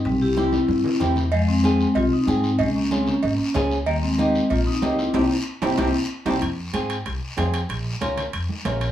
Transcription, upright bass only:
X:1
M:4/4
L:1/8
Q:1/4=188
K:Fm
V:1 name="Upright bass" clef=bass
C,,4 G,, z =E,,2 | F,,4 C,, z A,,2 | D,,4 A,,, z D,,2 | E,,4 B,,, z D,,2 |
C,, z2 C,, C,, z2 C,, | F,,2 A,,2 C,, z F,,2 | B,,,2 D,,2 F,, z B,,,2 |]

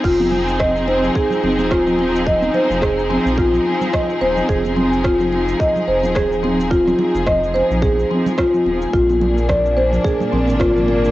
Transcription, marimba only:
X:1
M:4/4
L:1/16
Q:"Swing 16ths" 1/4=108
K:Fdor
V:1 name="Marimba"
F4 e z c2 A2 C z F4 | e z c2 A2 C z F4 e z c2 | A2 C z F4 e z c2 A2 C z | F4 e z c2 A2 C z F4 |
F4 d z c2 A2 C z F4 |]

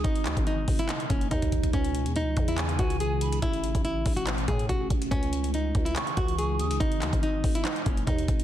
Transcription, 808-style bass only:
X:1
M:4/4
L:1/16
Q:1/4=142
K:C#m
V:1 name="808-style bass" clef=bass
G,,,2 D,, G,,,3 G,,,2 z2 F,,,2 D,,4 | C,,3 E,,3/2 C,,3/2 E,,4 C,,6 | A,,,3 A,,,3 A,,,4 A,,2 A,,,2 A,,,2 | C,,6 C,,2 z2 C,,4 D,, C,, |
G,,,2 D,, G,,,3 G,,,2 z2 F,,,2 D,,2 G,,,2 |]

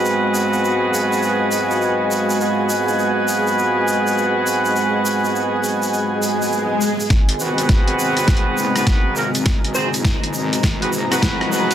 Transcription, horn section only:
X:1
M:4/4
L:1/16
Q:"Swing 16ths" 1/4=102
K:G#dor
V:1 name="Horn section"
[B,^B,FG=B]16 | [B,^B,FG=B]16- | [B,^B,FG=B]16 | z2 [B,^B,FG=B]8- [=B,^B,FG=B] [=B,^B,FG=B]3 [A,^B,FGA] z |
z2 [^B,FG^B] z6 [=B,^B,FG=B] z [=B,^B,FG=B]3 [=B,^B,FG=B]2 |]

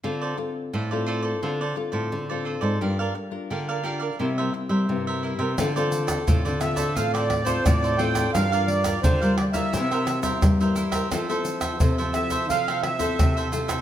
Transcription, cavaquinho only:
X:1
M:4/4
L:1/16
Q:1/4=87
K:Dm
V:1 name="Cavaquinho"
[FAcd] [Acd] z2 [FAcd] [Acd] [FAcd] [Acd] [FAcd] [Acd] z [Acd]2 [Acd] [FAcd] [Acd] | [GBdf] [Bdf] z2 [GBdf] [Bdf] [GBdf] [Bdf] [EBce] [Bce] z [Bce]2 [Bce] [EBce] [Bce] | [FAcd] [Acd]2 [Acd] [FAcd] [Acd] z [Acd] [FAcd] [Acd] z [Acd]2 [Acd] [FAcd] [Acd] | [GBdf] [Bdf]2 [Bdf] [GBdf] [Bdf] z [Bdf] [EBce] [Bce] z [Bce]2 [Bce] [EBce] [Bce] |
[FAce] [Ace]2 [Ace] [FAce] [Ace] z [Ace] [FAce] [Ace] z [Ace]2 [Ace] [FAce] [Ace] |]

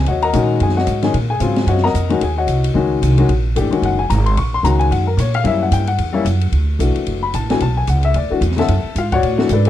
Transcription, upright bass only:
X:1
M:4/4
L:1/8
Q:"Swing" 1/4=222
K:Ebdor
V:1 name="Upright bass" clef=bass
E,,2 B,,2 G,,2 A,,2 | B,,2 A,,2 G,,2 F,,2 | E,,2 C,,2 D,,2 C,,2 | B,,,2 A,,, z G,,,2 A,,,2 |
B,,,2 D,,2 G,,2 B,,2 | G,,2 =G,,2 _F,,2 _G,,2 | [K:Bdor] D,,2 B,,, z F,,,2 A,,,2 | B,,,2 C,,2 D,, z E,,2 |
F,, z G,,2 A,,2 G,,2 |]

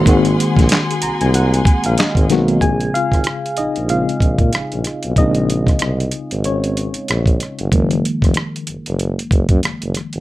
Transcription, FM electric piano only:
X:1
M:4/4
L:1/16
Q:"Swing 16ths" 1/4=94
K:Bbm
V:1 name="FM electric piano"
z6 b a g3 f e4 | [Aa]2 [Ff]4 [Ee]2 [Ff]8 | [Ee]8 [Dd]6 z2 | z16 |]
V:2 name="FM electric piano" clef=bass
[E,A,B,CG]6 z8 [E,A,B,CG]2 | [D,A,C]8 [D,A,C]2 z6 | [D,A,C]2 z12 z2 | [E,F,A,B,]16 |]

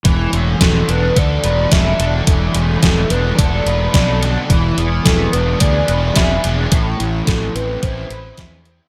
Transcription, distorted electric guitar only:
X:1
M:4/4
L:1/8
Q:1/4=108
K:Emix
V:1 name="Distorted electric guitar"
E, A, A, D A B A D | E, A, A, D A B A D | E, B, B, D G B G D | A,, E, A, =C E B E C |]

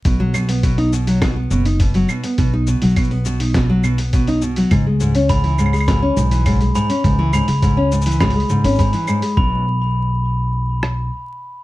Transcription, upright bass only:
X:1
M:4/4
L:1/16
Q:1/4=103
K:B
V:1 name="Upright bass" clef=bass
B,,,8- B,,,2 F,,,4 z2 | B,,,3 B,,,12- B,,, | C,,8- C,,2 B,,,4 z2 | C,,3 C,,6- C,, C,, G,,, z4 |
B,,,12 z4 |]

